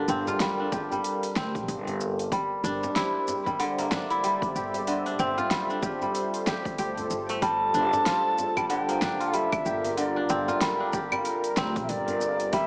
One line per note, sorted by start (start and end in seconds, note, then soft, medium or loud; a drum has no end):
0.00 2.11 D3 medium
0.00 12.52 G3 medium
0.00 0.61 A#3 medium
0.00 0.59 D4 medium
0.00 0.28 F4 medium
0.00 0.73 G4 medium
0.00 12.67 G4 medium
0.00 2.32 A4 medium
0.00 4.87 A#4 medium
0.00 2.32 F5 medium
0.00 12.67 A5 medium
0.08 0.24 G1 medium
0.08 1.36 C4 medium
0.08 shaker medium
0.27 1.79 F4 medium
0.27 djembe slap medium
0.27 djembe bass loud
0.27 shaker soft
0.40 0.91 G3 medium
0.40 snare medium
0.40 open hi-hat medium
0.40 shaker soft
0.60 2.28 D4 medium
0.72 2.14 G4 medium
0.72 kick loud
0.72 djembe tone medium
0.72 shaker medium
0.92 2.31 G3 medium
0.92 djembe bass medium
0.92 shaker soft
1.04 open hi-hat medium
1.04 shaker soft
1.23 open hi-hat soft
1.23 shaker soft
1.36 1.52 D2 medium
1.36 3.17 C4 medium
1.36 snare medium
1.36 djembe tone medium
1.36 shaker medium
1.55 1.66 A#1 medium
1.55 kick medium
1.55 open hi-hat soft
1.55 shaker soft
1.68 2.29 G1 loud
1.68 open hi-hat medium
1.68 shaker soft
1.87 open hi-hat soft
1.87 djembe bass medium
1.87 shaker soft
2.01 djembe tone medium
2.01 shaker medium
2.19 open hi-hat soft
2.19 shaker soft
2.32 3.45 G3 medium
2.32 kick loud
2.32 open hi-hat medium
2.32 shaker soft
2.60 2.80 G1 medium
2.60 9.49 C5 medium
2.64 3.91 D4 loud
2.64 shaker medium
2.83 djembe slap medium
2.83 djembe bass medium
2.83 shaker soft
2.96 4.10 E4 loud
2.96 snare medium
2.96 open hi-hat medium
2.96 shaker soft
3.28 djembe tone medium
3.28 shaker medium
3.46 3.65 G3 medium
3.46 5.91 D5 medium
3.46 7.42 E5 medium
3.46 kick medium
3.46 djembe bass medium
3.46 shaker soft
3.59 4.86 D3 loud
3.59 open hi-hat medium
3.59 djembe slap medium
3.59 shaker soft
3.78 5.72 A#3 medium
3.78 open hi-hat soft
3.78 djembe slap medium
3.78 shaker soft
3.91 5.06 D4 medium
3.91 snare medium
3.91 djembe slap soft
3.91 djembe bass medium
3.91 shaker medium
4.10 5.44 E4 medium
4.10 open hi-hat soft
4.10 shaker soft
4.24 4.92 G3 medium
4.24 open hi-hat medium
4.24 shaker soft
4.42 kick loud
4.42 open hi-hat soft
4.42 shaker soft
4.55 5.16 G1 medium
4.55 5.82 G4 medium
4.55 shaker medium
4.74 open hi-hat soft
4.74 djembe tone medium
4.74 shaker soft
4.87 7.22 D3 medium
4.87 open hi-hat medium
4.87 shaker soft
5.06 5.70 D4 medium
5.06 open hi-hat soft
5.06 djembe slap soft
5.19 5.35 G1 medium
5.19 6.99 C4 loud
5.19 shaker medium
5.38 6.89 F4 medium
5.38 djembe slap medium
5.38 djembe bass medium
5.38 shaker soft
5.51 6.01 G3 medium
5.51 snare medium
5.51 open hi-hat medium
5.51 shaker soft
5.55 12.53 A4 medium
5.70 7.38 D4 medium
5.70 shaker soft
5.82 6.47 G4 medium
5.82 kick loud
5.82 djembe tone medium
5.82 shaker medium
6.01 7.41 G3 medium
6.01 12.53 F4 medium
6.01 djembe bass medium
6.01 shaker soft
6.15 open hi-hat medium
6.15 shaker soft
6.34 open hi-hat soft
6.34 shaker soft
6.46 6.78 G4 medium
6.46 snare medium
6.46 djembe tone medium
6.46 shaker medium
6.65 kick loud
6.65 open hi-hat soft
6.65 shaker soft
6.78 7.06 D2 medium
6.78 8.20 G4 loud
6.78 open hi-hat medium
6.78 shaker soft
6.97 open hi-hat soft
6.97 djembe bass medium
6.97 shaker soft
7.10 7.71 G1 medium
7.10 djembe tone medium
7.10 shaker medium
7.29 8.94 A3 medium
7.29 open hi-hat soft
7.29 shaker soft
7.42 8.56 G3 loud
7.42 8.66 A5 loud
7.42 kick loud
7.42 open hi-hat medium
7.42 shaker soft
7.74 7.90 G1 medium
7.74 9.01 D4 loud
7.74 shaker medium
7.93 djembe slap medium
7.93 djembe bass medium
7.93 shaker soft
8.06 9.20 F4 medium
8.06 snare medium
8.06 open hi-hat medium
8.06 shaker soft
8.38 djembe tone medium
8.38 shaker medium
8.57 8.75 G3 medium
8.57 kick medium
8.57 djembe bass medium
8.57 claves medium
8.57 shaker soft
8.69 9.96 D3 loud
8.69 9.36 G5 loud
8.69 open hi-hat medium
8.69 djembe slap medium
8.69 shaker soft
8.88 10.81 A#3 medium
8.88 open hi-hat soft
8.88 djembe slap soft
8.88 shaker soft
9.01 10.16 D4 medium
9.01 snare medium
9.01 djembe slap soft
9.01 djembe bass medium
9.01 shaker medium
9.20 10.48 F4 medium
9.20 open hi-hat soft
9.20 shaker soft
9.33 10.03 G3 medium
9.33 9.97 E5 medium
9.33 open hi-hat medium
9.33 shaker soft
9.47 12.67 A#4 medium
9.52 kick loud
9.52 open hi-hat soft
9.52 claves medium
9.52 shaker soft
9.66 10.26 G1 medium
9.66 10.93 G4 medium
9.66 shaker medium
9.84 open hi-hat soft
9.84 djembe tone medium
9.84 shaker soft
9.97 12.31 D3 medium
9.97 10.58 D5 medium
9.97 open hi-hat medium
9.97 shaker soft
10.16 10.80 D4 medium
10.16 djembe slap soft
10.29 10.46 G1 medium
10.29 11.57 C4 medium
10.29 shaker medium
10.48 11.99 F4 medium
10.48 djembe slap medium
10.48 djembe bass medium
10.48 shaker soft
10.61 11.11 G3 medium
10.61 snare medium
10.61 open hi-hat medium
10.61 shaker soft
10.80 12.48 D4 medium
10.93 12.35 G4 medium
10.93 kick medium
10.93 djembe tone medium
10.93 shaker medium
11.12 12.52 G3 medium
11.12 djembe bass medium
11.12 claves medium
11.12 shaker soft
11.25 open hi-hat medium
11.25 shaker soft
11.44 open hi-hat soft
11.44 shaker soft
11.57 11.73 D2 loud
11.57 12.67 C4 medium
11.57 snare medium
11.57 djembe tone medium
11.57 shaker medium
11.76 11.87 A#1 medium
11.76 kick medium
11.76 open hi-hat soft
11.76 shaker soft
11.83 11.91 E5 medium
11.89 12.50 G1 medium
11.89 12.54 D5 loud
11.89 open hi-hat medium
11.89 shaker soft
12.08 open hi-hat soft
12.08 djembe bass medium
12.08 shaker soft
12.21 djembe tone medium
12.21 shaker medium
12.40 open hi-hat soft
12.40 shaker soft
12.53 12.67 G3 medium
12.53 12.67 E5 loud
12.53 kick loud
12.53 open hi-hat medium
12.53 shaker soft